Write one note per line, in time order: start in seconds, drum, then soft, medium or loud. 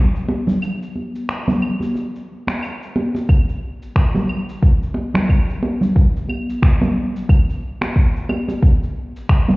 0.16 shaker soft
0.28 muted conga medium
0.47 low conga medium
0.47 shaker medium
0.62 claves medium
0.62 shaker medium
0.82 shaker soft
0.96 high conga soft
1.16 shaker medium
1.29 finger snap medium
1.29 shaker soft
1.48 muted conga medium
1.48 high conga medium
1.48 low conga medium
1.48 shaker soft
1.62 claves medium
1.80 high conga medium
1.80 shaker medium
1.95 muted conga soft
1.95 shaker soft
2.16 shaker soft
2.47 finger snap medium
2.47 muted conga medium
2.47 shaker medium
2.62 claves medium
2.62 shaker medium
2.83 shaker soft
2.96 muted conga medium
3.15 muted conga soft
3.15 shaker medium
3.29 kick loud
3.29 claves medium
3.29 shaker medium
3.49 shaker soft
3.82 shaker medium
3.96 finger snap medium
3.96 kick loud
3.96 shaker medium
4.15 muted conga medium
4.15 high conga medium
4.15 low conga medium
4.15 shaker soft
4.29 claves medium
4.49 shaker medium
4.63 kick loud
4.63 shaker soft
4.83 shaker soft
4.94 muted conga medium
5.14 finger snap medium
5.14 muted conga medium
5.14 low conga medium
5.14 shaker medium
5.29 kick loud
5.29 claves medium
5.29 shaker medium
5.50 shaker soft
5.63 muted conga medium
5.81 low conga medium
5.81 shaker medium
5.96 kick loud
5.96 shaker medium
6.16 shaker soft
6.29 high conga soft
6.29 claves medium
6.50 shaker medium
6.62 finger snap medium
6.62 kick loud
6.62 shaker medium
6.81 muted conga medium
6.81 high conga medium
6.81 low conga medium
6.81 shaker soft
7.16 shaker medium
7.29 kick loud
7.29 claves medium
7.29 shaker medium
7.50 shaker soft
7.81 finger snap medium
7.81 muted conga medium
7.81 shaker medium
7.96 kick loud
7.96 shaker medium
8.16 shaker soft
8.29 muted conga medium
8.29 claves medium
8.48 muted conga soft
8.48 shaker medium
8.63 kick loud
8.63 shaker medium
8.83 shaker soft
9.16 shaker medium
9.29 finger snap medium
9.29 kick loud
9.29 claves medium
9.29 shaker medium
9.48 muted conga medium
9.48 high conga medium
9.48 low conga medium
9.48 shaker soft